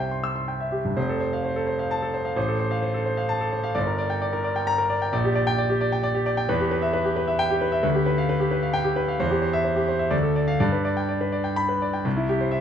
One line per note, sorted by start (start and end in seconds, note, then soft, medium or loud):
0.00 0.92 C2 medium
0.00 0.72 G4 soft
0.00 0.97 C5 soft
0.00 0.60 E5 soft
0.00 0.19 G5 soft
0.11 0.31 C6 soft
0.24 0.43 E6 medium
0.36 0.55 C6 soft
0.48 0.67 G5 soft
0.60 0.80 E5 soft
0.72 0.92 G4 soft
0.85 0.97 G2 soft
0.97 2.32 F1 medium
0.97 1.15 C5 medium
1.09 1.28 A4 medium
1.21 1.39 C5 medium
1.33 1.51 F5 medium
1.44 1.63 C5 soft
1.56 1.74 A4 medium
1.67 1.85 C5 medium
1.79 1.97 F5 medium
1.91 2.09 A5 medium
2.02 2.20 A4 medium
2.14 2.32 C5 medium
2.25 2.36 F5 soft
2.36 3.71 A1 medium
2.36 2.55 C5 medium
2.48 2.67 A4 medium
2.59 2.78 C5 medium
2.71 2.90 F5 medium
2.82 3.01 C5 medium
2.94 3.13 A4 medium
3.06 3.24 C5 medium
3.17 3.36 F5 medium
3.29 3.47 A5 medium
3.41 3.59 A4 medium
3.52 3.71 C5 medium
3.64 3.75 F5 medium
3.75 5.08 G1 medium
3.75 3.93 D5 medium
3.87 4.05 A#4 medium
3.98 4.16 D5 medium
4.10 4.28 G5 medium
4.22 4.40 D5 medium
4.33 4.51 A#4 medium
4.44 4.62 D5 medium
4.56 4.74 G5 medium
4.67 4.85 A#5 medium
4.78 4.97 A#4 medium
4.90 5.08 D5 medium
5.02 5.13 G5 medium
5.13 6.45 A#1 medium
5.13 5.31 D5 medium
5.25 5.42 G4 medium
5.35 5.53 D5 medium
5.47 5.65 G5 medium
5.58 5.76 D5 medium
5.70 5.87 G4 medium
5.81 5.99 D5 medium
5.92 6.10 G5 medium
6.03 6.21 D5 medium
6.14 6.33 G4 medium
6.26 6.44 D5 medium
6.37 6.49 G5 medium
6.49 7.80 E2 medium
6.49 6.67 B4 medium
6.60 6.78 G4 medium
6.71 6.89 B4 medium
6.82 7.00 E5 medium
6.93 7.12 B4 medium
7.05 7.23 G4 medium
7.16 7.35 B4 medium
7.27 7.46 E5 medium
7.39 7.57 G5 medium
7.50 7.68 G4 medium
7.61 7.79 B4 medium
7.72 7.84 E5 medium
7.83 9.15 D2 medium
7.83 8.01 B4 medium
7.95 8.13 G4 medium
8.06 8.24 B4 medium
8.18 8.36 F5 medium
8.29 8.47 B4 medium
8.40 8.58 G4 medium
8.51 8.70 B4 medium
8.63 8.81 F5 medium
8.73 8.92 G5 medium
8.84 9.03 G4 medium
8.96 9.15 B4 medium
9.08 9.20 F5 medium
9.20 10.09 E2 medium
9.20 9.38 C5 medium
9.31 9.49 G4 medium
9.42 9.60 C5 medium
9.53 9.72 E5 medium
9.64 9.83 C5 medium
9.76 9.95 G4 medium
9.88 10.07 C5 medium
9.99 10.12 E5 medium
10.11 10.59 D2 medium
10.11 10.31 D5 medium
10.23 10.43 A4 medium
10.36 10.56 D5 medium
10.48 10.60 F5 medium
10.60 12.01 G2 medium
10.60 10.80 D5 medium
10.72 10.92 B4 medium
10.85 11.04 D5 medium
10.97 11.16 G5 medium
11.09 11.28 D5 medium
11.21 11.40 B4 medium
11.32 11.52 D5 medium
11.44 11.64 G5 medium
11.56 11.76 B5 medium
11.69 11.88 B4 soft
11.82 12.01 D5 medium
11.93 12.05 G5 soft
12.05 12.61 C2 medium
12.17 12.36 E4 medium
12.29 12.48 G4 medium
12.41 12.59 C5 medium
12.51 12.61 E5 medium